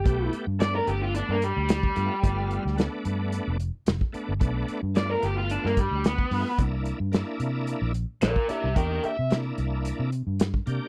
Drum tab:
HH |x-x-x-x-x-x-x-x-|x-x-x-x-x-x-x-x-|x-x-x-x-x-x-x-o-|x-x-x-x-x-x-x-x-|
SD |----o-------o---|---oo-------o---|----o----o--o---|----o-------o---|
BD |o------------o--|o------------o--|o---------o--o--|o------------o--|

HH |x-x-x-x-x-x-x-x-|
SD |----o-------o---|
BD |o------------o--|